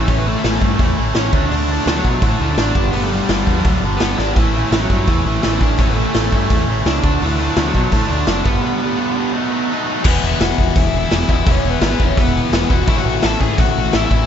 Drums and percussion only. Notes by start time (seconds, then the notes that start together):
0.08 kick, open hi-hat
0.44 snare, open hi-hat
0.61 kick
0.79 kick, open hi-hat
1.14 snare, open hi-hat
1.33 kick
1.52 open hi-hat
1.87 snare, open hi-hat
2.05 kick
2.22 kick, open hi-hat
2.57 snare, open hi-hat
2.75 kick
2.93 open hi-hat
3.29 snare, open hi-hat
3.47 kick
3.65 kick, open hi-hat
4.00 snare, open hi-hat
4.18 snare
4.36 kick, open hi-hat
4.72 snare, open hi-hat
4.90 kick
5.07 kick, open hi-hat
5.43 snare, open hi-hat
5.61 kick
5.78 kick, open hi-hat
6.14 snare, open hi-hat
6.32 kick
6.50 kick, open hi-hat
6.86 snare, open hi-hat
7.04 kick
7.22 open hi-hat
7.56 snare, open hi-hat
7.75 kick
7.92 kick, open hi-hat
8.27 snare, open hi-hat
8.46 kick
10.04 kick, crash
10.40 snare, open hi-hat
10.58 kick
10.75 kick, open hi-hat
11.11 snare, open hi-hat
11.29 kick
11.46 kick, open hi-hat
11.81 snare, open hi-hat
12.00 kick
12.17 kick, open hi-hat
12.53 snare, open hi-hat
12.70 kick
12.87 kick, open hi-hat
13.22 snare, open hi-hat
13.41 kick
13.58 kick, open hi-hat
13.93 snare, open hi-hat
14.11 kick